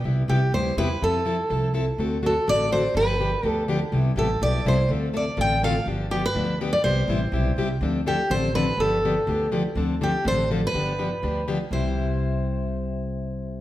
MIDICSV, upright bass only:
0, 0, Header, 1, 2, 480
1, 0, Start_track
1, 0, Key_signature, 0, "major"
1, 0, Tempo, 243013
1, 85, Time_signature, 4, 2, 24, 8
1, 26881, End_track
2, 0, Start_track
2, 0, Title_t, "Upright bass"
2, 0, Program_c, 0, 32
2, 79, Note_on_c, 0, 36, 77
2, 465, Note_off_c, 0, 36, 0
2, 552, Note_on_c, 0, 36, 81
2, 965, Note_off_c, 0, 36, 0
2, 1026, Note_on_c, 0, 38, 77
2, 1441, Note_off_c, 0, 38, 0
2, 1518, Note_on_c, 0, 40, 69
2, 1927, Note_off_c, 0, 40, 0
2, 2011, Note_on_c, 0, 41, 70
2, 2775, Note_off_c, 0, 41, 0
2, 2968, Note_on_c, 0, 36, 76
2, 3732, Note_off_c, 0, 36, 0
2, 3916, Note_on_c, 0, 38, 72
2, 4685, Note_off_c, 0, 38, 0
2, 4887, Note_on_c, 0, 33, 87
2, 5651, Note_off_c, 0, 33, 0
2, 5818, Note_on_c, 0, 31, 78
2, 6593, Note_off_c, 0, 31, 0
2, 6779, Note_on_c, 0, 38, 79
2, 7553, Note_off_c, 0, 38, 0
2, 7743, Note_on_c, 0, 36, 81
2, 8133, Note_off_c, 0, 36, 0
2, 8212, Note_on_c, 0, 33, 79
2, 8630, Note_off_c, 0, 33, 0
2, 8719, Note_on_c, 0, 35, 79
2, 9125, Note_off_c, 0, 35, 0
2, 9175, Note_on_c, 0, 36, 76
2, 9592, Note_off_c, 0, 36, 0
2, 9650, Note_on_c, 0, 38, 74
2, 10428, Note_off_c, 0, 38, 0
2, 10605, Note_on_c, 0, 33, 85
2, 11385, Note_off_c, 0, 33, 0
2, 11566, Note_on_c, 0, 31, 78
2, 12346, Note_off_c, 0, 31, 0
2, 12535, Note_on_c, 0, 38, 82
2, 13311, Note_off_c, 0, 38, 0
2, 13505, Note_on_c, 0, 36, 81
2, 13894, Note_off_c, 0, 36, 0
2, 13979, Note_on_c, 0, 33, 85
2, 14394, Note_off_c, 0, 33, 0
2, 14455, Note_on_c, 0, 35, 78
2, 14872, Note_off_c, 0, 35, 0
2, 14939, Note_on_c, 0, 36, 68
2, 15354, Note_off_c, 0, 36, 0
2, 15420, Note_on_c, 0, 38, 79
2, 16194, Note_off_c, 0, 38, 0
2, 16389, Note_on_c, 0, 33, 83
2, 17160, Note_off_c, 0, 33, 0
2, 17325, Note_on_c, 0, 31, 76
2, 18106, Note_off_c, 0, 31, 0
2, 18309, Note_on_c, 0, 38, 83
2, 19081, Note_off_c, 0, 38, 0
2, 19264, Note_on_c, 0, 38, 82
2, 20038, Note_off_c, 0, 38, 0
2, 20241, Note_on_c, 0, 33, 84
2, 21009, Note_off_c, 0, 33, 0
2, 21212, Note_on_c, 0, 31, 81
2, 21976, Note_off_c, 0, 31, 0
2, 22177, Note_on_c, 0, 38, 78
2, 22940, Note_off_c, 0, 38, 0
2, 23124, Note_on_c, 0, 36, 72
2, 26881, Note_off_c, 0, 36, 0
2, 26881, End_track
0, 0, End_of_file